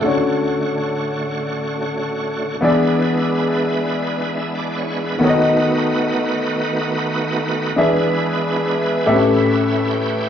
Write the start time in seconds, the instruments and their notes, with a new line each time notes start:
0.01 tonewheel organ D3 A3 F#4 C#5, grand piano D3 A3 C#4 D4
0.05 grand piano F#4 C#5
2.61 grand piano E3 B3 D4 E4 G#4 D5, tonewheel organ G#3 B3 D4 E4 B4
4.34 tonewheel organ E5
4.55 tonewheel organ D5
4.78 tonewheel organ C#5
4.98 tonewheel organ B4
5.18 tonewheel organ D#3 A3 B3 D#4 F#4 B4, grand piano D#3 B3 D#4 F#4 A4
5.22 grand piano C#5
5.29 grand piano D#5
7.76 grand piano E3 D4 E4 G#4 B4 E5, tonewheel organ G#3 B3 D4 E4 A#4
7.84 tonewheel organ B4
9.06 grand piano A2 C4 G4 A4 B4 E5, tonewheel organ A3 C#4 E4 G4 B4
9.12 grand piano C#4
9.48 tonewheel organ E5
9.91 tonewheel organ G5